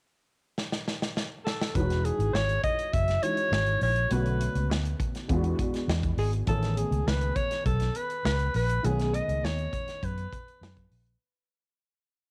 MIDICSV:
0, 0, Header, 1, 5, 480
1, 0, Start_track
1, 0, Key_signature, 4, "major"
1, 0, Tempo, 591133
1, 1423, Time_signature, 4, 2, 24, 8
1, 9991, End_track
2, 0, Start_track
2, 0, Title_t, "Alto saxophone"
2, 0, Program_c, 0, 65
2, 1177, Note_on_c, 0, 69, 75
2, 1428, Note_on_c, 0, 71, 80
2, 1440, Note_off_c, 0, 69, 0
2, 1663, Note_on_c, 0, 68, 79
2, 1675, Note_off_c, 0, 71, 0
2, 1902, Note_on_c, 0, 73, 88
2, 1914, Note_off_c, 0, 68, 0
2, 2136, Note_off_c, 0, 73, 0
2, 2141, Note_on_c, 0, 75, 93
2, 2377, Note_on_c, 0, 76, 91
2, 2389, Note_off_c, 0, 75, 0
2, 2621, Note_on_c, 0, 73, 98
2, 2634, Note_off_c, 0, 76, 0
2, 3101, Note_off_c, 0, 73, 0
2, 3107, Note_on_c, 0, 73, 82
2, 3347, Note_on_c, 0, 71, 81
2, 3360, Note_off_c, 0, 73, 0
2, 3824, Note_off_c, 0, 71, 0
2, 5023, Note_on_c, 0, 68, 71
2, 5130, Note_off_c, 0, 68, 0
2, 5265, Note_on_c, 0, 69, 86
2, 5501, Note_on_c, 0, 68, 76
2, 5513, Note_off_c, 0, 69, 0
2, 5745, Note_on_c, 0, 71, 79
2, 5757, Note_off_c, 0, 68, 0
2, 5976, Note_on_c, 0, 73, 87
2, 5988, Note_off_c, 0, 71, 0
2, 6215, Note_off_c, 0, 73, 0
2, 6220, Note_on_c, 0, 69, 80
2, 6466, Note_on_c, 0, 71, 84
2, 6478, Note_off_c, 0, 69, 0
2, 6698, Note_off_c, 0, 71, 0
2, 6703, Note_on_c, 0, 71, 90
2, 6924, Note_off_c, 0, 71, 0
2, 6948, Note_on_c, 0, 71, 85
2, 7188, Note_on_c, 0, 68, 88
2, 7200, Note_off_c, 0, 71, 0
2, 7426, Note_on_c, 0, 75, 97
2, 7438, Note_off_c, 0, 68, 0
2, 7668, Note_on_c, 0, 73, 87
2, 7680, Note_off_c, 0, 75, 0
2, 8155, Note_on_c, 0, 71, 85
2, 8167, Note_off_c, 0, 73, 0
2, 8868, Note_off_c, 0, 71, 0
2, 9991, End_track
3, 0, Start_track
3, 0, Title_t, "Grand piano"
3, 0, Program_c, 1, 0
3, 1412, Note_on_c, 1, 52, 65
3, 1419, Note_on_c, 1, 56, 56
3, 1420, Note_on_c, 1, 61, 58
3, 1427, Note_on_c, 1, 63, 56
3, 1434, Note_on_c, 1, 66, 65
3, 1553, Control_c, 1, 64, 127
3, 2593, Note_off_c, 1, 52, 0
3, 2596, Note_off_c, 1, 56, 0
3, 2597, Note_off_c, 1, 61, 0
3, 2600, Note_off_c, 1, 63, 0
3, 2604, Note_off_c, 1, 66, 0
3, 2615, Note_on_c, 1, 52, 45
3, 2617, Note_on_c, 1, 56, 41
3, 2620, Note_on_c, 1, 61, 41
3, 2621, Note_on_c, 1, 63, 41
3, 2626, Note_on_c, 1, 66, 50
3, 3326, Note_on_c, 1, 50, 60
3, 3332, Note_off_c, 1, 61, 0
3, 3332, Note_on_c, 1, 57, 58
3, 3335, Note_off_c, 1, 66, 0
3, 3338, Note_off_c, 1, 52, 0
3, 3339, Note_off_c, 1, 56, 0
3, 3340, Note_on_c, 1, 59, 57
3, 3341, Note_off_c, 1, 63, 0
3, 3344, Note_on_c, 1, 61, 58
3, 3347, Note_on_c, 1, 66, 66
3, 3354, Control_c, 1, 64, 0
3, 3484, Control_c, 1, 64, 127
3, 4273, Note_off_c, 1, 50, 0
3, 4276, Note_off_c, 1, 57, 0
3, 4280, Note_off_c, 1, 59, 0
3, 4282, Note_off_c, 1, 61, 0
3, 4284, Note_off_c, 1, 66, 0
3, 4289, Note_on_c, 1, 52, 78
3, 4292, Note_on_c, 1, 56, 67
3, 4298, Note_on_c, 1, 59, 73
3, 4304, Note_on_c, 1, 62, 67
3, 4310, Note_on_c, 1, 65, 63
3, 4311, Control_c, 1, 64, 0
3, 4358, Note_off_c, 1, 65, 0
3, 4363, Note_on_c, 1, 66, 82
3, 4464, Control_c, 1, 64, 127
3, 5234, Note_off_c, 1, 52, 0
3, 5235, Note_off_c, 1, 56, 0
3, 5239, Note_off_c, 1, 59, 0
3, 5242, Note_off_c, 1, 62, 0
3, 5248, Note_on_c, 1, 51, 66
3, 5257, Note_on_c, 1, 57, 59
3, 5263, Note_on_c, 1, 59, 54
3, 5265, Note_on_c, 1, 61, 58
3, 5271, Control_c, 1, 64, 0
3, 5271, Note_on_c, 1, 68, 72
3, 5272, Note_off_c, 1, 66, 0
3, 5395, Control_c, 1, 64, 127
3, 7140, Note_off_c, 1, 51, 0
3, 7145, Note_off_c, 1, 57, 0
3, 7148, Note_off_c, 1, 59, 0
3, 7149, Note_off_c, 1, 61, 0
3, 7152, Note_off_c, 1, 68, 0
3, 7170, Note_on_c, 1, 51, 65
3, 7177, Note_on_c, 1, 57, 54
3, 7182, Note_on_c, 1, 59, 60
3, 7186, Note_on_c, 1, 61, 58
3, 7189, Control_c, 1, 64, 0
3, 7191, Note_on_c, 1, 68, 70
3, 7309, Control_c, 1, 64, 127
3, 9065, Note_off_c, 1, 51, 0
3, 9068, Note_off_c, 1, 57, 0
3, 9071, Note_off_c, 1, 59, 0
3, 9073, Note_off_c, 1, 61, 0
3, 9075, Note_off_c, 1, 68, 0
3, 9113, Control_c, 1, 64, 0
3, 9991, End_track
4, 0, Start_track
4, 0, Title_t, "Fingered electric bass"
4, 0, Program_c, 2, 33
4, 1420, Note_on_c, 2, 28, 94
4, 1705, Note_off_c, 2, 28, 0
4, 1777, Note_on_c, 2, 32, 82
4, 1874, Note_off_c, 2, 32, 0
4, 1898, Note_on_c, 2, 32, 79
4, 2089, Note_off_c, 2, 32, 0
4, 2384, Note_on_c, 2, 30, 75
4, 2573, Note_off_c, 2, 30, 0
4, 2855, Note_on_c, 2, 32, 85
4, 3047, Note_off_c, 2, 32, 0
4, 3098, Note_on_c, 2, 34, 81
4, 3288, Note_off_c, 2, 34, 0
4, 3338, Note_on_c, 2, 35, 91
4, 3623, Note_off_c, 2, 35, 0
4, 3698, Note_on_c, 2, 37, 81
4, 3813, Note_off_c, 2, 37, 0
4, 3813, Note_on_c, 2, 38, 83
4, 4005, Note_off_c, 2, 38, 0
4, 4301, Note_on_c, 2, 40, 93
4, 4490, Note_off_c, 2, 40, 0
4, 4775, Note_on_c, 2, 40, 89
4, 4966, Note_off_c, 2, 40, 0
4, 5011, Note_on_c, 2, 32, 84
4, 5203, Note_off_c, 2, 32, 0
4, 5256, Note_on_c, 2, 33, 83
4, 5541, Note_off_c, 2, 33, 0
4, 5612, Note_on_c, 2, 37, 89
4, 5709, Note_off_c, 2, 37, 0
4, 5739, Note_on_c, 2, 37, 87
4, 5928, Note_off_c, 2, 37, 0
4, 6216, Note_on_c, 2, 35, 81
4, 6406, Note_off_c, 2, 35, 0
4, 6698, Note_on_c, 2, 37, 80
4, 6887, Note_off_c, 2, 37, 0
4, 6940, Note_on_c, 2, 34, 88
4, 7128, Note_off_c, 2, 34, 0
4, 7181, Note_on_c, 2, 35, 95
4, 7464, Note_off_c, 2, 35, 0
4, 7538, Note_on_c, 2, 37, 82
4, 7633, Note_off_c, 2, 37, 0
4, 7658, Note_on_c, 2, 39, 88
4, 7848, Note_off_c, 2, 39, 0
4, 8142, Note_on_c, 2, 42, 79
4, 8330, Note_off_c, 2, 42, 0
4, 8618, Note_on_c, 2, 42, 81
4, 8808, Note_off_c, 2, 42, 0
4, 8863, Note_on_c, 2, 34, 85
4, 9052, Note_off_c, 2, 34, 0
4, 9991, End_track
5, 0, Start_track
5, 0, Title_t, "Drums"
5, 470, Note_on_c, 9, 38, 63
5, 551, Note_off_c, 9, 38, 0
5, 588, Note_on_c, 9, 38, 68
5, 669, Note_off_c, 9, 38, 0
5, 712, Note_on_c, 9, 38, 68
5, 793, Note_off_c, 9, 38, 0
5, 830, Note_on_c, 9, 38, 73
5, 911, Note_off_c, 9, 38, 0
5, 949, Note_on_c, 9, 38, 83
5, 1031, Note_off_c, 9, 38, 0
5, 1191, Note_on_c, 9, 38, 83
5, 1272, Note_off_c, 9, 38, 0
5, 1311, Note_on_c, 9, 38, 94
5, 1392, Note_off_c, 9, 38, 0
5, 1422, Note_on_c, 9, 36, 90
5, 1424, Note_on_c, 9, 42, 78
5, 1503, Note_off_c, 9, 36, 0
5, 1505, Note_off_c, 9, 42, 0
5, 1545, Note_on_c, 9, 42, 50
5, 1552, Note_on_c, 9, 38, 32
5, 1627, Note_off_c, 9, 42, 0
5, 1633, Note_off_c, 9, 38, 0
5, 1664, Note_on_c, 9, 42, 76
5, 1745, Note_off_c, 9, 42, 0
5, 1786, Note_on_c, 9, 42, 47
5, 1867, Note_off_c, 9, 42, 0
5, 1908, Note_on_c, 9, 38, 87
5, 1989, Note_off_c, 9, 38, 0
5, 2023, Note_on_c, 9, 42, 42
5, 2104, Note_off_c, 9, 42, 0
5, 2140, Note_on_c, 9, 36, 76
5, 2142, Note_on_c, 9, 42, 69
5, 2222, Note_off_c, 9, 36, 0
5, 2223, Note_off_c, 9, 42, 0
5, 2264, Note_on_c, 9, 42, 44
5, 2345, Note_off_c, 9, 42, 0
5, 2383, Note_on_c, 9, 36, 85
5, 2384, Note_on_c, 9, 42, 70
5, 2464, Note_off_c, 9, 36, 0
5, 2465, Note_off_c, 9, 42, 0
5, 2500, Note_on_c, 9, 42, 46
5, 2512, Note_on_c, 9, 38, 31
5, 2581, Note_off_c, 9, 42, 0
5, 2593, Note_off_c, 9, 38, 0
5, 2622, Note_on_c, 9, 42, 74
5, 2703, Note_off_c, 9, 42, 0
5, 2738, Note_on_c, 9, 42, 39
5, 2820, Note_off_c, 9, 42, 0
5, 2865, Note_on_c, 9, 38, 105
5, 2947, Note_off_c, 9, 38, 0
5, 2976, Note_on_c, 9, 42, 42
5, 3057, Note_off_c, 9, 42, 0
5, 3096, Note_on_c, 9, 46, 66
5, 3178, Note_off_c, 9, 46, 0
5, 3215, Note_on_c, 9, 42, 49
5, 3297, Note_off_c, 9, 42, 0
5, 3335, Note_on_c, 9, 42, 84
5, 3416, Note_off_c, 9, 42, 0
5, 3458, Note_on_c, 9, 42, 46
5, 3539, Note_off_c, 9, 42, 0
5, 3579, Note_on_c, 9, 42, 76
5, 3660, Note_off_c, 9, 42, 0
5, 3698, Note_on_c, 9, 42, 51
5, 3779, Note_off_c, 9, 42, 0
5, 3828, Note_on_c, 9, 38, 88
5, 3909, Note_off_c, 9, 38, 0
5, 3941, Note_on_c, 9, 42, 45
5, 4022, Note_off_c, 9, 42, 0
5, 4057, Note_on_c, 9, 36, 82
5, 4061, Note_on_c, 9, 42, 71
5, 4138, Note_off_c, 9, 36, 0
5, 4142, Note_off_c, 9, 42, 0
5, 4181, Note_on_c, 9, 42, 46
5, 4187, Note_on_c, 9, 38, 30
5, 4262, Note_off_c, 9, 42, 0
5, 4268, Note_off_c, 9, 38, 0
5, 4298, Note_on_c, 9, 36, 84
5, 4301, Note_on_c, 9, 42, 73
5, 4379, Note_off_c, 9, 36, 0
5, 4382, Note_off_c, 9, 42, 0
5, 4418, Note_on_c, 9, 42, 45
5, 4499, Note_off_c, 9, 42, 0
5, 4539, Note_on_c, 9, 36, 73
5, 4541, Note_on_c, 9, 42, 75
5, 4620, Note_off_c, 9, 36, 0
5, 4622, Note_off_c, 9, 42, 0
5, 4661, Note_on_c, 9, 42, 43
5, 4669, Note_on_c, 9, 38, 33
5, 4742, Note_off_c, 9, 42, 0
5, 4750, Note_off_c, 9, 38, 0
5, 4787, Note_on_c, 9, 38, 108
5, 4868, Note_off_c, 9, 38, 0
5, 4897, Note_on_c, 9, 42, 43
5, 4899, Note_on_c, 9, 36, 79
5, 4978, Note_off_c, 9, 42, 0
5, 4980, Note_off_c, 9, 36, 0
5, 5018, Note_on_c, 9, 46, 71
5, 5099, Note_off_c, 9, 46, 0
5, 5141, Note_on_c, 9, 42, 49
5, 5222, Note_off_c, 9, 42, 0
5, 5254, Note_on_c, 9, 42, 85
5, 5256, Note_on_c, 9, 36, 88
5, 5335, Note_off_c, 9, 42, 0
5, 5338, Note_off_c, 9, 36, 0
5, 5381, Note_on_c, 9, 42, 47
5, 5388, Note_on_c, 9, 38, 33
5, 5462, Note_off_c, 9, 42, 0
5, 5469, Note_off_c, 9, 38, 0
5, 5500, Note_on_c, 9, 42, 78
5, 5582, Note_off_c, 9, 42, 0
5, 5622, Note_on_c, 9, 42, 47
5, 5703, Note_off_c, 9, 42, 0
5, 5747, Note_on_c, 9, 38, 91
5, 5828, Note_off_c, 9, 38, 0
5, 5857, Note_on_c, 9, 42, 43
5, 5938, Note_off_c, 9, 42, 0
5, 5975, Note_on_c, 9, 36, 79
5, 5976, Note_on_c, 9, 42, 72
5, 6057, Note_off_c, 9, 36, 0
5, 6057, Note_off_c, 9, 42, 0
5, 6098, Note_on_c, 9, 42, 46
5, 6104, Note_on_c, 9, 38, 30
5, 6179, Note_off_c, 9, 42, 0
5, 6185, Note_off_c, 9, 38, 0
5, 6218, Note_on_c, 9, 36, 86
5, 6219, Note_on_c, 9, 42, 77
5, 6299, Note_off_c, 9, 36, 0
5, 6301, Note_off_c, 9, 42, 0
5, 6333, Note_on_c, 9, 42, 46
5, 6345, Note_on_c, 9, 38, 34
5, 6414, Note_off_c, 9, 42, 0
5, 6426, Note_off_c, 9, 38, 0
5, 6455, Note_on_c, 9, 42, 72
5, 6537, Note_off_c, 9, 42, 0
5, 6577, Note_on_c, 9, 42, 42
5, 6659, Note_off_c, 9, 42, 0
5, 6703, Note_on_c, 9, 38, 109
5, 6784, Note_off_c, 9, 38, 0
5, 6815, Note_on_c, 9, 42, 42
5, 6896, Note_off_c, 9, 42, 0
5, 6937, Note_on_c, 9, 46, 70
5, 7019, Note_off_c, 9, 46, 0
5, 7061, Note_on_c, 9, 42, 51
5, 7142, Note_off_c, 9, 42, 0
5, 7183, Note_on_c, 9, 42, 82
5, 7264, Note_off_c, 9, 42, 0
5, 7305, Note_on_c, 9, 42, 47
5, 7311, Note_on_c, 9, 38, 33
5, 7386, Note_off_c, 9, 42, 0
5, 7393, Note_off_c, 9, 38, 0
5, 7424, Note_on_c, 9, 42, 82
5, 7506, Note_off_c, 9, 42, 0
5, 7545, Note_on_c, 9, 42, 50
5, 7627, Note_off_c, 9, 42, 0
5, 7671, Note_on_c, 9, 38, 91
5, 7752, Note_off_c, 9, 38, 0
5, 7783, Note_on_c, 9, 42, 45
5, 7864, Note_off_c, 9, 42, 0
5, 7900, Note_on_c, 9, 36, 79
5, 7904, Note_on_c, 9, 42, 72
5, 7981, Note_off_c, 9, 36, 0
5, 7985, Note_off_c, 9, 42, 0
5, 8021, Note_on_c, 9, 42, 45
5, 8027, Note_on_c, 9, 38, 30
5, 8102, Note_off_c, 9, 42, 0
5, 8108, Note_off_c, 9, 38, 0
5, 8142, Note_on_c, 9, 36, 83
5, 8146, Note_on_c, 9, 42, 77
5, 8223, Note_off_c, 9, 36, 0
5, 8228, Note_off_c, 9, 42, 0
5, 8263, Note_on_c, 9, 42, 42
5, 8344, Note_off_c, 9, 42, 0
5, 8384, Note_on_c, 9, 36, 74
5, 8390, Note_on_c, 9, 42, 77
5, 8465, Note_off_c, 9, 36, 0
5, 8471, Note_off_c, 9, 42, 0
5, 8511, Note_on_c, 9, 42, 41
5, 8592, Note_off_c, 9, 42, 0
5, 8633, Note_on_c, 9, 38, 113
5, 8715, Note_off_c, 9, 38, 0
5, 8742, Note_on_c, 9, 42, 41
5, 8743, Note_on_c, 9, 36, 74
5, 8823, Note_off_c, 9, 42, 0
5, 8825, Note_off_c, 9, 36, 0
5, 8864, Note_on_c, 9, 46, 67
5, 8946, Note_off_c, 9, 46, 0
5, 8986, Note_on_c, 9, 42, 47
5, 9067, Note_off_c, 9, 42, 0
5, 9991, End_track
0, 0, End_of_file